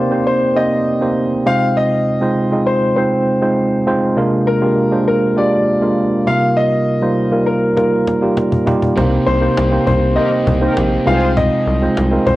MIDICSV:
0, 0, Header, 1, 7, 480
1, 0, Start_track
1, 0, Key_signature, -3, "minor"
1, 0, Tempo, 600000
1, 1415, Time_signature, 4, 2, 24, 8
1, 9888, End_track
2, 0, Start_track
2, 0, Title_t, "Grand piano"
2, 0, Program_c, 0, 0
2, 0, Note_on_c, 0, 72, 85
2, 183, Note_off_c, 0, 72, 0
2, 215, Note_on_c, 0, 72, 86
2, 452, Note_on_c, 0, 75, 94
2, 462, Note_off_c, 0, 72, 0
2, 1142, Note_off_c, 0, 75, 0
2, 1173, Note_on_c, 0, 77, 103
2, 1397, Note_off_c, 0, 77, 0
2, 1416, Note_on_c, 0, 75, 105
2, 2132, Note_on_c, 0, 72, 90
2, 2157, Note_off_c, 0, 75, 0
2, 2358, Note_off_c, 0, 72, 0
2, 2370, Note_on_c, 0, 72, 73
2, 3061, Note_off_c, 0, 72, 0
2, 3576, Note_on_c, 0, 70, 92
2, 4024, Note_off_c, 0, 70, 0
2, 4061, Note_on_c, 0, 70, 89
2, 4301, Note_on_c, 0, 74, 91
2, 4306, Note_off_c, 0, 70, 0
2, 4986, Note_off_c, 0, 74, 0
2, 5016, Note_on_c, 0, 77, 100
2, 5253, Note_on_c, 0, 75, 108
2, 5263, Note_off_c, 0, 77, 0
2, 5942, Note_off_c, 0, 75, 0
2, 5970, Note_on_c, 0, 70, 85
2, 6200, Note_off_c, 0, 70, 0
2, 6212, Note_on_c, 0, 70, 79
2, 6902, Note_off_c, 0, 70, 0
2, 7411, Note_on_c, 0, 72, 102
2, 7861, Note_off_c, 0, 72, 0
2, 7893, Note_on_c, 0, 72, 87
2, 8126, Note_on_c, 0, 75, 94
2, 8141, Note_off_c, 0, 72, 0
2, 8856, Note_on_c, 0, 77, 100
2, 8873, Note_off_c, 0, 75, 0
2, 9079, Note_off_c, 0, 77, 0
2, 9096, Note_on_c, 0, 75, 103
2, 9813, Note_on_c, 0, 72, 93
2, 9837, Note_off_c, 0, 75, 0
2, 9888, Note_off_c, 0, 72, 0
2, 9888, End_track
3, 0, Start_track
3, 0, Title_t, "Analog polysynth"
3, 0, Program_c, 1, 90
3, 8138, Note_on_c, 1, 63, 85
3, 8138, Note_on_c, 1, 67, 87
3, 8139, Note_on_c, 1, 70, 96
3, 8239, Note_off_c, 1, 63, 0
3, 8239, Note_off_c, 1, 67, 0
3, 8239, Note_off_c, 1, 70, 0
3, 8496, Note_on_c, 1, 63, 87
3, 8496, Note_on_c, 1, 70, 97
3, 8497, Note_on_c, 1, 67, 82
3, 8598, Note_off_c, 1, 63, 0
3, 8598, Note_off_c, 1, 67, 0
3, 8598, Note_off_c, 1, 70, 0
3, 8851, Note_on_c, 1, 68, 95
3, 8852, Note_on_c, 1, 65, 102
3, 8853, Note_on_c, 1, 72, 105
3, 9057, Note_off_c, 1, 65, 0
3, 9057, Note_off_c, 1, 68, 0
3, 9058, Note_off_c, 1, 72, 0
3, 9888, End_track
4, 0, Start_track
4, 0, Title_t, "Tine electric piano"
4, 0, Program_c, 2, 4
4, 0, Control_c, 2, 64, 127
4, 0, Note_on_c, 2, 48, 78
4, 0, Note_on_c, 2, 58, 80
4, 0, Note_on_c, 2, 60, 70
4, 0, Note_on_c, 2, 63, 70
4, 0, Note_on_c, 2, 67, 72
4, 0, Note_on_c, 2, 72, 93
4, 0, Note_on_c, 2, 74, 82
4, 86, Note_off_c, 2, 58, 0
4, 86, Note_on_c, 2, 58, 76
4, 88, Note_off_c, 2, 60, 0
4, 88, Note_on_c, 2, 60, 71
4, 91, Note_off_c, 2, 63, 0
4, 91, Note_on_c, 2, 63, 68
4, 93, Note_off_c, 2, 67, 0
4, 93, Note_on_c, 2, 67, 66
4, 96, Note_off_c, 2, 72, 0
4, 96, Note_on_c, 2, 72, 83
4, 184, Note_off_c, 2, 48, 0
4, 354, Note_off_c, 2, 58, 0
4, 355, Note_off_c, 2, 60, 0
4, 356, Note_off_c, 2, 63, 0
4, 358, Note_off_c, 2, 67, 0
4, 359, Note_off_c, 2, 72, 0
4, 447, Note_on_c, 2, 58, 73
4, 451, Note_on_c, 2, 60, 69
4, 451, Note_on_c, 2, 63, 67
4, 454, Note_on_c, 2, 67, 68
4, 457, Note_on_c, 2, 72, 82
4, 715, Note_off_c, 2, 58, 0
4, 716, Note_off_c, 2, 60, 0
4, 716, Note_off_c, 2, 63, 0
4, 718, Note_off_c, 2, 67, 0
4, 719, Note_off_c, 2, 72, 0
4, 808, Note_on_c, 2, 58, 74
4, 813, Note_on_c, 2, 60, 69
4, 813, Note_on_c, 2, 63, 68
4, 817, Note_on_c, 2, 67, 68
4, 817, Note_on_c, 2, 72, 86
4, 1075, Note_off_c, 2, 58, 0
4, 1077, Note_off_c, 2, 60, 0
4, 1078, Note_off_c, 2, 63, 0
4, 1079, Note_off_c, 2, 67, 0
4, 1079, Note_off_c, 2, 72, 0
4, 1167, Note_on_c, 2, 56, 82
4, 1170, Note_on_c, 2, 60, 76
4, 1171, Note_on_c, 2, 48, 72
4, 1172, Note_on_c, 2, 63, 80
4, 1174, Note_on_c, 2, 65, 77
4, 1177, Note_on_c, 2, 72, 93
4, 1184, Control_c, 2, 64, 0
4, 1186, Note_off_c, 2, 74, 0
4, 1323, Control_c, 2, 64, 127
4, 1651, Note_off_c, 2, 56, 0
4, 1653, Note_off_c, 2, 60, 0
4, 1654, Note_off_c, 2, 63, 0
4, 1655, Note_off_c, 2, 65, 0
4, 1656, Note_off_c, 2, 72, 0
4, 1768, Note_on_c, 2, 56, 77
4, 1769, Note_on_c, 2, 60, 71
4, 1773, Note_on_c, 2, 63, 73
4, 1774, Note_on_c, 2, 65, 71
4, 1779, Note_on_c, 2, 72, 88
4, 1861, Note_off_c, 2, 48, 0
4, 1947, Note_off_c, 2, 56, 0
4, 1948, Note_off_c, 2, 60, 0
4, 1950, Note_off_c, 2, 63, 0
4, 1950, Note_off_c, 2, 65, 0
4, 1952, Note_off_c, 2, 72, 0
4, 2012, Note_on_c, 2, 56, 77
4, 2014, Note_on_c, 2, 60, 72
4, 2017, Note_on_c, 2, 63, 70
4, 2018, Note_on_c, 2, 65, 66
4, 2023, Note_on_c, 2, 75, 86
4, 2277, Note_off_c, 2, 56, 0
4, 2278, Note_off_c, 2, 60, 0
4, 2280, Note_off_c, 2, 63, 0
4, 2280, Note_off_c, 2, 65, 0
4, 2282, Note_off_c, 2, 75, 0
4, 2373, Note_on_c, 2, 56, 71
4, 2376, Note_on_c, 2, 60, 73
4, 2378, Note_on_c, 2, 63, 67
4, 2381, Note_on_c, 2, 65, 69
4, 2382, Note_on_c, 2, 72, 83
4, 2637, Note_off_c, 2, 56, 0
4, 2639, Note_off_c, 2, 60, 0
4, 2640, Note_off_c, 2, 63, 0
4, 2641, Note_off_c, 2, 65, 0
4, 2642, Note_off_c, 2, 72, 0
4, 2729, Note_on_c, 2, 56, 78
4, 2732, Note_on_c, 2, 60, 71
4, 2734, Note_on_c, 2, 63, 69
4, 2736, Note_on_c, 2, 65, 71
4, 2738, Note_on_c, 2, 72, 89
4, 2995, Note_off_c, 2, 56, 0
4, 2997, Note_off_c, 2, 60, 0
4, 2998, Note_off_c, 2, 63, 0
4, 2999, Note_off_c, 2, 65, 0
4, 3000, Note_off_c, 2, 72, 0
4, 3093, Note_on_c, 2, 60, 88
4, 3094, Note_on_c, 2, 56, 93
4, 3096, Note_on_c, 2, 63, 87
4, 3100, Note_on_c, 2, 65, 87
4, 3101, Note_on_c, 2, 72, 100
4, 3270, Note_off_c, 2, 56, 0
4, 3270, Note_off_c, 2, 60, 0
4, 3271, Note_off_c, 2, 63, 0
4, 3273, Note_off_c, 2, 65, 0
4, 3274, Note_off_c, 2, 72, 0
4, 3331, Note_on_c, 2, 56, 93
4, 3335, Note_on_c, 2, 58, 81
4, 3336, Note_on_c, 2, 48, 81
4, 3337, Note_on_c, 2, 62, 83
4, 3339, Note_on_c, 2, 65, 88
4, 3342, Note_on_c, 2, 70, 101
4, 3344, Control_c, 2, 64, 0
4, 3481, Control_c, 2, 64, 127
4, 3596, Note_off_c, 2, 56, 0
4, 3598, Note_off_c, 2, 58, 0
4, 3600, Note_off_c, 2, 62, 0
4, 3600, Note_off_c, 2, 65, 0
4, 3602, Note_off_c, 2, 70, 0
4, 3692, Note_on_c, 2, 56, 76
4, 3693, Note_on_c, 2, 58, 73
4, 3695, Note_on_c, 2, 62, 71
4, 3697, Note_on_c, 2, 65, 76
4, 3700, Note_on_c, 2, 67, 87
4, 3869, Note_off_c, 2, 56, 0
4, 3869, Note_off_c, 2, 58, 0
4, 3871, Note_off_c, 2, 62, 0
4, 3872, Note_off_c, 2, 65, 0
4, 3873, Note_off_c, 2, 67, 0
4, 3930, Note_on_c, 2, 56, 77
4, 3934, Note_on_c, 2, 58, 69
4, 3937, Note_on_c, 2, 62, 72
4, 3938, Note_on_c, 2, 65, 67
4, 3942, Note_on_c, 2, 72, 85
4, 4024, Note_off_c, 2, 48, 0
4, 4196, Note_off_c, 2, 56, 0
4, 4198, Note_off_c, 2, 58, 0
4, 4199, Note_off_c, 2, 62, 0
4, 4200, Note_off_c, 2, 65, 0
4, 4202, Note_off_c, 2, 72, 0
4, 4291, Note_on_c, 2, 56, 79
4, 4293, Note_on_c, 2, 58, 68
4, 4296, Note_on_c, 2, 62, 70
4, 4298, Note_on_c, 2, 65, 69
4, 4301, Note_on_c, 2, 67, 79
4, 4556, Note_off_c, 2, 56, 0
4, 4557, Note_off_c, 2, 58, 0
4, 4559, Note_off_c, 2, 62, 0
4, 4560, Note_off_c, 2, 65, 0
4, 4562, Note_off_c, 2, 67, 0
4, 4652, Note_on_c, 2, 56, 76
4, 4654, Note_on_c, 2, 58, 71
4, 4656, Note_on_c, 2, 62, 69
4, 4659, Note_on_c, 2, 65, 75
4, 4661, Note_on_c, 2, 70, 84
4, 4917, Note_off_c, 2, 56, 0
4, 4918, Note_off_c, 2, 58, 0
4, 4919, Note_off_c, 2, 62, 0
4, 4920, Note_off_c, 2, 65, 0
4, 4921, Note_off_c, 2, 70, 0
4, 5011, Note_on_c, 2, 55, 80
4, 5015, Note_on_c, 2, 58, 77
4, 5017, Note_on_c, 2, 63, 77
4, 5018, Note_on_c, 2, 48, 70
4, 5019, Note_on_c, 2, 65, 77
4, 5023, Note_on_c, 2, 70, 88
4, 5024, Control_c, 2, 64, 0
4, 5181, Control_c, 2, 64, 127
4, 5493, Note_off_c, 2, 55, 0
4, 5495, Note_off_c, 2, 58, 0
4, 5496, Note_off_c, 2, 63, 0
4, 5497, Note_off_c, 2, 65, 0
4, 5499, Note_off_c, 2, 70, 0
4, 5613, Note_on_c, 2, 55, 78
4, 5615, Note_on_c, 2, 58, 69
4, 5618, Note_on_c, 2, 63, 76
4, 5619, Note_on_c, 2, 65, 73
4, 5622, Note_on_c, 2, 72, 92
4, 5705, Note_off_c, 2, 48, 0
4, 5790, Note_off_c, 2, 55, 0
4, 5790, Note_off_c, 2, 58, 0
4, 5792, Note_off_c, 2, 63, 0
4, 5793, Note_off_c, 2, 65, 0
4, 5794, Note_off_c, 2, 72, 0
4, 5848, Note_on_c, 2, 55, 75
4, 5852, Note_on_c, 2, 58, 69
4, 5855, Note_on_c, 2, 63, 70
4, 5857, Note_on_c, 2, 65, 70
4, 5860, Note_on_c, 2, 70, 86
4, 6115, Note_off_c, 2, 55, 0
4, 6117, Note_off_c, 2, 58, 0
4, 6119, Note_off_c, 2, 63, 0
4, 6119, Note_off_c, 2, 65, 0
4, 6121, Note_off_c, 2, 70, 0
4, 6212, Note_on_c, 2, 55, 71
4, 6214, Note_on_c, 2, 58, 69
4, 6217, Note_on_c, 2, 63, 70
4, 6221, Note_on_c, 2, 65, 66
4, 6223, Note_on_c, 2, 70, 79
4, 6477, Note_off_c, 2, 55, 0
4, 6478, Note_off_c, 2, 58, 0
4, 6480, Note_off_c, 2, 63, 0
4, 6481, Note_off_c, 2, 65, 0
4, 6482, Note_off_c, 2, 70, 0
4, 6572, Note_on_c, 2, 55, 73
4, 6574, Note_on_c, 2, 58, 68
4, 6577, Note_on_c, 2, 63, 68
4, 6579, Note_on_c, 2, 65, 72
4, 6581, Note_on_c, 2, 67, 84
4, 6837, Note_off_c, 2, 55, 0
4, 6838, Note_off_c, 2, 58, 0
4, 6839, Note_off_c, 2, 63, 0
4, 6840, Note_off_c, 2, 65, 0
4, 6842, Note_off_c, 2, 67, 0
4, 6928, Note_on_c, 2, 55, 91
4, 6931, Note_on_c, 2, 58, 85
4, 6932, Note_on_c, 2, 63, 88
4, 6936, Note_on_c, 2, 65, 84
4, 6937, Note_on_c, 2, 67, 102
4, 7107, Note_off_c, 2, 55, 0
4, 7108, Note_off_c, 2, 58, 0
4, 7109, Note_off_c, 2, 63, 0
4, 7111, Note_off_c, 2, 65, 0
4, 7112, Note_off_c, 2, 67, 0
4, 7169, Note_on_c, 2, 58, 91
4, 7171, Note_on_c, 2, 60, 81
4, 7172, Note_on_c, 2, 48, 81
4, 7174, Note_on_c, 2, 63, 79
4, 7177, Note_on_c, 2, 67, 77
4, 7179, Note_on_c, 2, 72, 95
4, 7184, Control_c, 2, 64, 0
4, 7329, Control_c, 2, 64, 127
4, 7436, Note_off_c, 2, 58, 0
4, 7436, Note_off_c, 2, 60, 0
4, 7438, Note_off_c, 2, 63, 0
4, 7439, Note_off_c, 2, 67, 0
4, 7440, Note_off_c, 2, 72, 0
4, 7530, Note_on_c, 2, 58, 79
4, 7532, Note_on_c, 2, 60, 72
4, 7533, Note_on_c, 2, 63, 71
4, 7535, Note_on_c, 2, 67, 73
4, 7538, Note_on_c, 2, 72, 87
4, 7708, Note_off_c, 2, 58, 0
4, 7709, Note_off_c, 2, 60, 0
4, 7710, Note_off_c, 2, 63, 0
4, 7711, Note_off_c, 2, 67, 0
4, 7712, Note_off_c, 2, 72, 0
4, 7771, Note_on_c, 2, 58, 75
4, 7776, Note_on_c, 2, 60, 68
4, 7778, Note_on_c, 2, 63, 71
4, 7780, Note_on_c, 2, 67, 69
4, 7780, Note_on_c, 2, 72, 84
4, 7862, Note_off_c, 2, 48, 0
4, 8036, Note_off_c, 2, 58, 0
4, 8039, Note_off_c, 2, 60, 0
4, 8040, Note_off_c, 2, 63, 0
4, 8041, Note_off_c, 2, 67, 0
4, 8041, Note_off_c, 2, 72, 0
4, 8129, Note_on_c, 2, 58, 73
4, 8131, Note_on_c, 2, 60, 67
4, 8134, Note_on_c, 2, 63, 68
4, 8136, Note_on_c, 2, 67, 68
4, 8139, Note_on_c, 2, 72, 86
4, 8395, Note_off_c, 2, 58, 0
4, 8397, Note_off_c, 2, 60, 0
4, 8398, Note_off_c, 2, 63, 0
4, 8399, Note_off_c, 2, 67, 0
4, 8400, Note_off_c, 2, 72, 0
4, 8491, Note_on_c, 2, 58, 77
4, 8493, Note_on_c, 2, 60, 68
4, 8494, Note_on_c, 2, 63, 71
4, 8497, Note_on_c, 2, 67, 71
4, 8499, Note_on_c, 2, 72, 84
4, 8756, Note_off_c, 2, 58, 0
4, 8757, Note_off_c, 2, 60, 0
4, 8758, Note_off_c, 2, 63, 0
4, 8760, Note_off_c, 2, 67, 0
4, 8760, Note_off_c, 2, 72, 0
4, 8846, Note_on_c, 2, 56, 83
4, 8851, Note_on_c, 2, 48, 65
4, 8851, Note_on_c, 2, 60, 75
4, 8853, Note_on_c, 2, 63, 77
4, 8854, Note_on_c, 2, 65, 73
4, 8858, Note_on_c, 2, 71, 75
4, 8866, Control_c, 2, 64, 0
4, 8908, Note_on_c, 2, 72, 93
4, 8909, Note_off_c, 2, 71, 0
4, 9022, Control_c, 2, 64, 127
4, 9331, Note_off_c, 2, 56, 0
4, 9333, Note_off_c, 2, 60, 0
4, 9334, Note_off_c, 2, 63, 0
4, 9335, Note_off_c, 2, 65, 0
4, 9362, Note_off_c, 2, 72, 0
4, 9451, Note_on_c, 2, 56, 82
4, 9454, Note_on_c, 2, 60, 70
4, 9456, Note_on_c, 2, 63, 73
4, 9460, Note_on_c, 2, 65, 72
4, 9463, Note_on_c, 2, 72, 90
4, 9541, Note_off_c, 2, 48, 0
4, 9629, Note_off_c, 2, 56, 0
4, 9630, Note_off_c, 2, 60, 0
4, 9631, Note_off_c, 2, 63, 0
4, 9633, Note_off_c, 2, 65, 0
4, 9634, Note_off_c, 2, 72, 0
4, 9690, Note_on_c, 2, 56, 74
4, 9690, Note_on_c, 2, 60, 73
4, 9693, Note_on_c, 2, 63, 68
4, 9696, Note_on_c, 2, 65, 71
4, 9698, Note_on_c, 2, 70, 85
4, 9888, Note_off_c, 2, 56, 0
4, 9888, Note_off_c, 2, 60, 0
4, 9888, Note_off_c, 2, 63, 0
4, 9888, Note_off_c, 2, 65, 0
4, 9888, Note_off_c, 2, 70, 0
4, 9888, End_track
5, 0, Start_track
5, 0, Title_t, "Overdriven electric guitar"
5, 0, Program_c, 3, 29
5, 7171, Note_on_c, 3, 48, 93
5, 7178, Note_on_c, 3, 55, 99
5, 7184, Note_on_c, 3, 60, 107
5, 7641, Note_off_c, 3, 48, 0
5, 7651, Note_off_c, 3, 55, 0
5, 7651, Note_on_c, 3, 48, 64
5, 7660, Note_on_c, 3, 55, 61
5, 7663, Note_off_c, 3, 60, 0
5, 7666, Note_on_c, 3, 60, 61
5, 8121, Note_off_c, 3, 48, 0
5, 8127, Note_off_c, 3, 55, 0
5, 8131, Note_on_c, 3, 48, 82
5, 8137, Note_on_c, 3, 55, 78
5, 8138, Note_off_c, 3, 60, 0
5, 8141, Note_on_c, 3, 60, 96
5, 8601, Note_off_c, 3, 48, 0
5, 8609, Note_off_c, 3, 55, 0
5, 8611, Note_on_c, 3, 48, 61
5, 8619, Note_on_c, 3, 55, 61
5, 8624, Note_off_c, 3, 60, 0
5, 8627, Note_on_c, 3, 60, 64
5, 8850, Note_on_c, 3, 65, 66
5, 8853, Note_off_c, 3, 48, 0
5, 8853, Note_off_c, 3, 60, 0
5, 8857, Note_off_c, 3, 55, 0
5, 8863, Note_on_c, 3, 60, 65
5, 8875, Note_on_c, 3, 53, 51
5, 9888, Note_off_c, 3, 53, 0
5, 9888, Note_off_c, 3, 60, 0
5, 9888, Note_off_c, 3, 65, 0
5, 9888, End_track
6, 0, Start_track
6, 0, Title_t, "Analog synth bass"
6, 0, Program_c, 4, 38
6, 7180, Note_on_c, 4, 36, 95
6, 7351, Note_off_c, 4, 36, 0
6, 7418, Note_on_c, 4, 36, 98
6, 7590, Note_off_c, 4, 36, 0
6, 7660, Note_on_c, 4, 36, 105
6, 7831, Note_off_c, 4, 36, 0
6, 7898, Note_on_c, 4, 36, 101
6, 8156, Note_off_c, 4, 36, 0
6, 8375, Note_on_c, 4, 36, 105
6, 8548, Note_off_c, 4, 36, 0
6, 8618, Note_on_c, 4, 34, 98
6, 8790, Note_off_c, 4, 34, 0
6, 8855, Note_on_c, 4, 36, 105
6, 9201, Note_off_c, 4, 36, 0
6, 9334, Note_on_c, 4, 36, 101
6, 9507, Note_off_c, 4, 36, 0
6, 9579, Note_on_c, 4, 36, 103
6, 9750, Note_off_c, 4, 36, 0
6, 9815, Note_on_c, 4, 36, 108
6, 9888, Note_off_c, 4, 36, 0
6, 9888, End_track
7, 0, Start_track
7, 0, Title_t, "Cajon"
7, 6218, Note_on_c, 9, 38, 58
7, 6298, Note_off_c, 9, 38, 0
7, 6459, Note_on_c, 9, 38, 81
7, 6539, Note_off_c, 9, 38, 0
7, 6695, Note_on_c, 9, 38, 90
7, 6775, Note_off_c, 9, 38, 0
7, 6816, Note_on_c, 9, 36, 80
7, 6896, Note_off_c, 9, 36, 0
7, 6936, Note_on_c, 9, 36, 105
7, 7016, Note_off_c, 9, 36, 0
7, 7058, Note_on_c, 9, 36, 92
7, 7138, Note_off_c, 9, 36, 0
7, 7180, Note_on_c, 9, 36, 116
7, 7260, Note_off_c, 9, 36, 0
7, 7301, Note_on_c, 9, 38, 31
7, 7381, Note_off_c, 9, 38, 0
7, 7419, Note_on_c, 9, 38, 48
7, 7499, Note_off_c, 9, 38, 0
7, 7538, Note_on_c, 9, 38, 28
7, 7618, Note_off_c, 9, 38, 0
7, 7658, Note_on_c, 9, 38, 118
7, 7738, Note_off_c, 9, 38, 0
7, 7898, Note_on_c, 9, 36, 89
7, 7978, Note_off_c, 9, 36, 0
7, 8137, Note_on_c, 9, 38, 47
7, 8217, Note_off_c, 9, 38, 0
7, 8377, Note_on_c, 9, 36, 101
7, 8457, Note_off_c, 9, 36, 0
7, 8615, Note_on_c, 9, 38, 124
7, 8695, Note_off_c, 9, 38, 0
7, 8857, Note_on_c, 9, 38, 43
7, 8937, Note_off_c, 9, 38, 0
7, 9096, Note_on_c, 9, 36, 118
7, 9176, Note_off_c, 9, 36, 0
7, 9216, Note_on_c, 9, 38, 31
7, 9296, Note_off_c, 9, 38, 0
7, 9336, Note_on_c, 9, 38, 45
7, 9416, Note_off_c, 9, 38, 0
7, 9460, Note_on_c, 9, 38, 29
7, 9540, Note_off_c, 9, 38, 0
7, 9577, Note_on_c, 9, 38, 118
7, 9657, Note_off_c, 9, 38, 0
7, 9815, Note_on_c, 9, 36, 87
7, 9888, Note_off_c, 9, 36, 0
7, 9888, End_track
0, 0, End_of_file